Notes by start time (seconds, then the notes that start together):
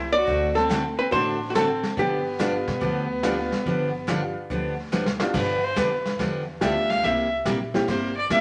Already playing: C2 E4 C5
0.12 F#4 D5
0.27 D2 D3 A3 C4 F#4 A4, brush sweep, kick
0.55 C4 A4, snare
0.69 D3 A3 C4 F#4 A4, snare, hi-hat pedal
0.98 C4 B4
1.12 A1 D3 A3 C4 D4 F#4 A4 C5, brush sweep, kick
1.50 A3 F#4
1.55 D3 A3 C4 F#4 A4, snare, hi-hat pedal
1.83 snare
1.97 G1 D3 F3 B3 D4 G4, brush sweep, kick
2.39 D3 F3 G3 B3 D4 F4 G4, snare, hi-hat pedal
2.67 kick, snare
2.81 D2 D3 F3 B3 D4 G4, brush sweep, kick
3.23 D3 F3 G3 B3 D4 F4 G4, snare, hi-hat pedal
3.52 snare
3.65 G1 D3 F3 B3 D4 G4, brush sweep, kick
4.07 D3 F3 G3 B3 D4 F4 G4, snare, hi-hat pedal
4.50 D2 D3 F3 B3 D4 G4, brush sweep, kick
4.92 D3 F3 B3 D4 G4, snare, hi-hat pedal
5.06 snare
5.20 G3 B3 D4 F4, snare
5.34 G2 D3 F3 B3 D4 G4 B4, brush sweep, kick, snare, crash
5.64 C5
5.76 F2 D3 F3 B3 D4 G4 B4, kick, snare, hi-hat pedal
6.05 snare
6.19 E2 D3 F3 B3 D4 G4, brush sweep, kick, snare
6.61 D2 D3 F3 G3 B3 D4 F4 G4 E5, kick, snare, hi-hat pedal
6.90 F5, snare
7.03 C2 C3 G3 A#3 E4 G4 E5, brush sweep, kick, snare
7.45 A#1 C3 G3 A#3 E4 G4, kick, snare, hi-hat pedal
7.74 G3 A#3 C4 E4 G4, snare
7.88 G1 C3 G3 A#3 E4 G4 C5, brush sweep, kick, snare
8.17 D5
8.30 F1 C3 G3 A#3 E4 G4 E5, kick, snare, hi-hat pedal